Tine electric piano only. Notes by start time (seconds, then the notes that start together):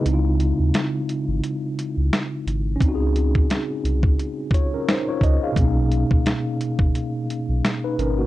Already playing: G#3 E4
0.01 C#3
0.05 C4
0.09 D#4
0.13 F4
2.76 C#4
2.80 C4
2.84 D#4 F#4
2.95 G#4
4.54 F4 C#5
4.74 C#4 A#4
4.89 D#4 C5
5.09 F4 C#5
5.23 D#5
5.43 G#4 F5
5.52 B2
5.56 A#3
5.60 C#4
5.64 D#4
7.84 D#4 B4
7.99 C#4 A#4
8.19 A#3 F#4